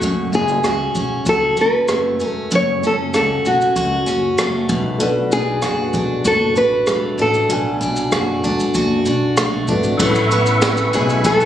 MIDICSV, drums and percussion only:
0, 0, Header, 1, 2, 480
1, 0, Start_track
1, 0, Key_signature, 3, "major"
1, 0, Tempo, 623053
1, 17, Time_signature, 4, 2, 24, 8
1, 8823, End_track
2, 0, Start_track
2, 0, Title_t, "Drums"
2, 13, Note_on_c, 9, 36, 92
2, 13, Note_on_c, 9, 82, 66
2, 90, Note_off_c, 9, 36, 0
2, 90, Note_off_c, 9, 82, 0
2, 260, Note_on_c, 9, 82, 45
2, 337, Note_off_c, 9, 82, 0
2, 371, Note_on_c, 9, 82, 46
2, 448, Note_off_c, 9, 82, 0
2, 491, Note_on_c, 9, 82, 60
2, 494, Note_on_c, 9, 37, 84
2, 568, Note_off_c, 9, 82, 0
2, 571, Note_off_c, 9, 37, 0
2, 733, Note_on_c, 9, 82, 48
2, 734, Note_on_c, 9, 36, 75
2, 810, Note_off_c, 9, 82, 0
2, 811, Note_off_c, 9, 36, 0
2, 969, Note_on_c, 9, 82, 68
2, 972, Note_on_c, 9, 36, 79
2, 1046, Note_off_c, 9, 82, 0
2, 1049, Note_off_c, 9, 36, 0
2, 1209, Note_on_c, 9, 82, 45
2, 1215, Note_on_c, 9, 37, 31
2, 1286, Note_off_c, 9, 82, 0
2, 1292, Note_off_c, 9, 37, 0
2, 1449, Note_on_c, 9, 82, 75
2, 1452, Note_on_c, 9, 37, 116
2, 1526, Note_off_c, 9, 82, 0
2, 1529, Note_off_c, 9, 37, 0
2, 1692, Note_on_c, 9, 82, 42
2, 1770, Note_off_c, 9, 82, 0
2, 1934, Note_on_c, 9, 82, 64
2, 2011, Note_off_c, 9, 82, 0
2, 2185, Note_on_c, 9, 82, 46
2, 2262, Note_off_c, 9, 82, 0
2, 2417, Note_on_c, 9, 82, 64
2, 2420, Note_on_c, 9, 37, 85
2, 2494, Note_off_c, 9, 82, 0
2, 2497, Note_off_c, 9, 37, 0
2, 2661, Note_on_c, 9, 82, 49
2, 2738, Note_off_c, 9, 82, 0
2, 2784, Note_on_c, 9, 82, 44
2, 2861, Note_off_c, 9, 82, 0
2, 2896, Note_on_c, 9, 36, 85
2, 2898, Note_on_c, 9, 82, 75
2, 2973, Note_off_c, 9, 36, 0
2, 2975, Note_off_c, 9, 82, 0
2, 3138, Note_on_c, 9, 82, 50
2, 3144, Note_on_c, 9, 37, 35
2, 3215, Note_off_c, 9, 82, 0
2, 3221, Note_off_c, 9, 37, 0
2, 3375, Note_on_c, 9, 82, 70
2, 3379, Note_on_c, 9, 37, 116
2, 3452, Note_off_c, 9, 82, 0
2, 3456, Note_off_c, 9, 37, 0
2, 3614, Note_on_c, 9, 82, 47
2, 3615, Note_on_c, 9, 36, 101
2, 3691, Note_off_c, 9, 82, 0
2, 3692, Note_off_c, 9, 36, 0
2, 3855, Note_on_c, 9, 82, 61
2, 3932, Note_off_c, 9, 82, 0
2, 4096, Note_on_c, 9, 82, 50
2, 4173, Note_off_c, 9, 82, 0
2, 4329, Note_on_c, 9, 82, 59
2, 4332, Note_on_c, 9, 37, 83
2, 4406, Note_off_c, 9, 82, 0
2, 4410, Note_off_c, 9, 37, 0
2, 4572, Note_on_c, 9, 82, 47
2, 4575, Note_on_c, 9, 36, 76
2, 4649, Note_off_c, 9, 82, 0
2, 4652, Note_off_c, 9, 36, 0
2, 4813, Note_on_c, 9, 82, 70
2, 4814, Note_on_c, 9, 36, 80
2, 4890, Note_off_c, 9, 82, 0
2, 4891, Note_off_c, 9, 36, 0
2, 5052, Note_on_c, 9, 82, 49
2, 5058, Note_on_c, 9, 37, 34
2, 5129, Note_off_c, 9, 82, 0
2, 5135, Note_off_c, 9, 37, 0
2, 5290, Note_on_c, 9, 82, 67
2, 5294, Note_on_c, 9, 37, 127
2, 5367, Note_off_c, 9, 82, 0
2, 5371, Note_off_c, 9, 37, 0
2, 5534, Note_on_c, 9, 82, 44
2, 5611, Note_off_c, 9, 82, 0
2, 5654, Note_on_c, 9, 82, 45
2, 5731, Note_off_c, 9, 82, 0
2, 5777, Note_on_c, 9, 82, 62
2, 5855, Note_off_c, 9, 82, 0
2, 6024, Note_on_c, 9, 82, 53
2, 6101, Note_off_c, 9, 82, 0
2, 6134, Note_on_c, 9, 82, 48
2, 6211, Note_off_c, 9, 82, 0
2, 6255, Note_on_c, 9, 82, 63
2, 6258, Note_on_c, 9, 37, 98
2, 6332, Note_off_c, 9, 82, 0
2, 6335, Note_off_c, 9, 37, 0
2, 6501, Note_on_c, 9, 36, 85
2, 6502, Note_on_c, 9, 82, 47
2, 6578, Note_off_c, 9, 36, 0
2, 6579, Note_off_c, 9, 82, 0
2, 6623, Note_on_c, 9, 82, 44
2, 6700, Note_off_c, 9, 82, 0
2, 6736, Note_on_c, 9, 82, 76
2, 6739, Note_on_c, 9, 36, 80
2, 6813, Note_off_c, 9, 82, 0
2, 6816, Note_off_c, 9, 36, 0
2, 6976, Note_on_c, 9, 82, 47
2, 7053, Note_off_c, 9, 82, 0
2, 7219, Note_on_c, 9, 82, 75
2, 7223, Note_on_c, 9, 37, 118
2, 7296, Note_off_c, 9, 82, 0
2, 7300, Note_off_c, 9, 37, 0
2, 7454, Note_on_c, 9, 82, 50
2, 7460, Note_on_c, 9, 36, 91
2, 7531, Note_off_c, 9, 82, 0
2, 7537, Note_off_c, 9, 36, 0
2, 7576, Note_on_c, 9, 82, 51
2, 7654, Note_off_c, 9, 82, 0
2, 7696, Note_on_c, 9, 49, 96
2, 7700, Note_on_c, 9, 36, 108
2, 7773, Note_off_c, 9, 49, 0
2, 7777, Note_off_c, 9, 36, 0
2, 7821, Note_on_c, 9, 82, 54
2, 7898, Note_off_c, 9, 82, 0
2, 7944, Note_on_c, 9, 82, 53
2, 8021, Note_off_c, 9, 82, 0
2, 8060, Note_on_c, 9, 82, 57
2, 8137, Note_off_c, 9, 82, 0
2, 8178, Note_on_c, 9, 82, 68
2, 8181, Note_on_c, 9, 38, 105
2, 8255, Note_off_c, 9, 82, 0
2, 8258, Note_off_c, 9, 38, 0
2, 8298, Note_on_c, 9, 82, 54
2, 8375, Note_off_c, 9, 82, 0
2, 8426, Note_on_c, 9, 82, 58
2, 8503, Note_off_c, 9, 82, 0
2, 8548, Note_on_c, 9, 82, 47
2, 8625, Note_off_c, 9, 82, 0
2, 8662, Note_on_c, 9, 82, 81
2, 8663, Note_on_c, 9, 36, 94
2, 8739, Note_off_c, 9, 82, 0
2, 8740, Note_off_c, 9, 36, 0
2, 8785, Note_on_c, 9, 82, 61
2, 8823, Note_off_c, 9, 82, 0
2, 8823, End_track
0, 0, End_of_file